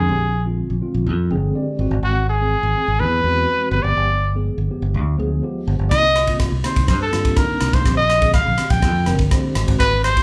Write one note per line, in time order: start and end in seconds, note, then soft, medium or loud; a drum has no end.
0.00 0.46 G#4 medium
0.08 0.61 A#1 medium
0.08 0.20 D3 medium
0.08 0.21 G#3 medium
0.08 0.20 C4 medium
0.08 0.21 G4 medium
0.21 0.27 C4 soft
0.21 0.28 G4 soft
0.44 0.68 D3 medium
0.44 0.69 G#3 medium
0.44 0.68 C4 medium
0.44 0.69 F4 medium
0.69 0.80 A#1 medium
0.69 0.75 C4 soft
0.69 0.76 F4 soft
0.81 1.04 D3 medium
0.81 1.05 G#3 medium
0.81 1.04 C4 medium
0.81 1.05 F4 medium
0.94 1.08 A#1 medium
1.06 1.32 F2 loud
1.06 1.12 C4 soft
1.30 1.51 G1 medium
1.30 1.53 D3 loud
1.30 1.53 G#3 medium
1.30 1.54 C4 medium
1.30 1.54 G#4 loud
1.30 1.53 G5 medium
1.54 1.79 D3 medium
1.54 1.78 G#3 medium
1.54 1.79 C4 medium
1.54 1.80 G4 medium
1.54 2.00 D5 medium
1.79 1.89 G#1 medium
1.79 2.14 E3 medium
1.79 2.14 G#3 medium
1.79 2.14 C4 medium
1.79 2.15 F#4 loud
1.91 2.01 G#1 medium
2.03 2.55 G#1 medium
2.03 2.26 F#4 medium
2.15 2.21 C4 soft
2.15 2.22 F#4 soft
2.29 3.01 G#4 medium
2.40 2.63 E3 medium
2.40 2.63 G#3 medium
2.40 2.63 C4 medium
2.40 2.64 G#4 medium
2.63 2.74 G#1 medium
2.63 2.70 C4 soft
2.63 2.71 F#4 soft
2.76 2.99 E3 medium
2.76 2.99 G#3 medium
2.76 2.98 C4 medium
2.76 3.00 G#4 medium
2.88 3.01 G#1 medium
2.99 3.20 E2 medium
2.99 3.06 C4 soft
2.99 3.07 G#4 soft
2.99 3.71 B4 loud
3.24 3.45 E2 medium
3.24 3.47 E3 medium
3.24 3.47 G#3 medium
3.24 3.48 C4 medium
3.24 3.48 F#4 loud
3.49 3.73 E3 medium
3.49 3.72 G#3 medium
3.49 3.74 C4 medium
3.49 3.74 F#4 medium
3.71 3.83 G1 loud
3.71 4.07 F3 medium
3.71 4.08 G#3 medium
3.71 4.08 B3 medium
3.71 4.08 G4 medium
3.71 3.84 B4 medium
3.83 3.95 G1 medium
3.83 4.33 D5 loud
3.97 4.49 G1 medium
4.12 4.17 D4 soft
4.34 4.57 F3 medium
4.34 4.57 G#3 medium
4.34 4.56 B3 medium
4.34 4.58 G#4 medium
4.58 4.68 G1 medium
4.58 4.64 B3 soft
4.58 4.64 D4 soft
4.69 4.93 F3 medium
4.69 4.93 G#3 medium
4.69 4.93 B3 medium
4.69 4.94 G4 medium
4.82 4.96 G1 medium
4.94 5.15 D2 loud
4.94 5.00 B3 soft
4.94 5.01 G4 soft
5.17 5.40 D2 medium
5.17 5.41 F3 loud
5.17 5.41 G#3 medium
5.17 5.41 B3 medium
5.17 5.42 G#4 loud
5.42 5.89 F3 medium
5.42 5.89 G#3 medium
5.42 5.89 B3 medium
5.42 5.90 G4 medium
5.67 5.78 G1 medium
5.79 5.89 G1 medium
5.90 6.44 C2 medium
5.90 6.03 D3 medium
5.90 6.03 A#3 medium
5.90 6.02 C4 medium
5.90 6.04 D#4 loud
5.90 6.36 D#5 loud
5.90 kick medium
5.90 cross-stick medium
5.90 ride medium
6.03 6.09 C4 soft
6.03 6.10 F4 soft
6.16 cross-stick medium
6.16 ride medium
6.27 6.51 D3 medium
6.27 6.51 A#3 medium
6.27 6.51 C4 medium
6.27 6.52 F4 medium
6.27 kick medium
6.27 ride medium
6.40 kick medium
6.40 cross-stick medium
6.40 ride medium
6.52 6.62 C2 medium
6.52 6.58 C4 soft
6.64 6.87 D3 medium
6.64 6.87 A#3 medium
6.64 6.87 C4 medium
6.64 6.88 D#4 medium
6.64 6.87 C5 medium
6.64 cross-stick medium
6.64 ride medium
6.76 6.90 C2 medium
6.76 kick medium
6.76 ride medium
6.88 7.09 G2 medium
6.88 6.94 C4 soft
6.88 6.95 F4 soft
6.88 7.00 C5 medium
6.88 kick medium
6.88 cross-stick medium
6.88 ride medium
7.02 7.39 A4 medium
7.12 7.34 G2 medium
7.12 7.35 D3 medium
7.12 7.35 A#3 medium
7.12 7.36 C4 medium
7.12 7.36 F4 medium
7.12 cross-stick medium
7.12 ride medium
7.25 kick medium
7.25 ride medium
7.36 7.83 A#3 medium
7.36 7.83 C4 medium
7.36 7.83 D4 medium
7.36 7.83 D#4 medium
7.36 7.76 A#4 medium
7.36 kick loud
7.36 cross-stick medium
7.36 ride medium
7.61 7.72 C2 medium
7.61 cross-stick medium
7.61 ride medium
7.73 7.84 C2 medium
7.73 7.96 C5 medium
7.73 kick medium
7.73 ride medium
7.84 8.38 A#1 medium
7.84 7.96 D3 medium
7.84 7.97 G#3 medium
7.84 7.96 C4 medium
7.84 7.98 G4 loud
7.84 kick medium
7.84 cross-stick medium
7.84 ride medium
7.97 8.03 C4 soft
7.97 8.04 F4 soft
7.97 8.31 D#5 medium
8.10 cross-stick medium
8.10 ride medium
8.20 8.44 D3 medium
8.20 8.44 G#3 medium
8.20 8.44 C4 medium
8.20 8.45 G#4 medium
8.20 kick medium
8.20 ride medium
8.34 8.72 F5 medium
8.34 kick loud
8.34 cross-stick medium
8.34 ride medium
8.46 8.57 A#1 medium
8.46 8.52 C4 soft
8.46 8.53 G4 soft
8.57 8.81 D3 medium
8.57 8.81 G#3 medium
8.57 8.81 C4 medium
8.57 8.82 G4 medium
8.57 cross-stick medium
8.57 ride medium
8.70 8.84 A#1 medium
8.70 9.19 G5 medium
8.70 kick medium
8.70 ride medium
8.82 9.09 F2 medium
8.82 8.88 C4 soft
8.82 8.89 G4 soft
8.82 kick medium
8.82 cross-stick medium
8.82 ride medium
9.06 9.28 G1 medium
9.06 9.29 D3 medium
9.06 9.30 G#3 medium
9.06 9.30 C4 medium
9.06 9.30 A#4 medium
9.06 cross-stick medium
9.06 ride medium
9.19 kick medium
9.19 ride medium
9.30 9.55 D3 medium
9.30 9.54 G#3 medium
9.30 9.54 C4 medium
9.30 9.56 G4 medium
9.30 9.77 C5 medium
9.30 kick loud
9.30 cross-stick medium
9.30 ride medium
9.54 9.66 G#1 medium
9.54 9.90 E3 medium
9.54 9.90 G#3 medium
9.54 9.90 C4 medium
9.54 9.91 F#4 loud
9.54 cross-stick loud
9.54 ride medium
9.68 9.78 G#1 loud
9.68 kick medium
9.68 ride medium
9.79 10.23 G#1 medium
9.79 10.02 B4 loud
9.79 kick medium
9.79 cross-stick medium
9.79 ride medium
9.92 9.98 C4 soft
9.92 9.99 D4 soft
10.04 10.23 C5 loud
10.04 cross-stick medium
10.04 ride medium
10.16 10.23 E3 medium
10.16 10.23 G#3 medium
10.16 10.23 C4 medium
10.16 10.23 F#4 medium
10.16 kick medium
10.16 ride medium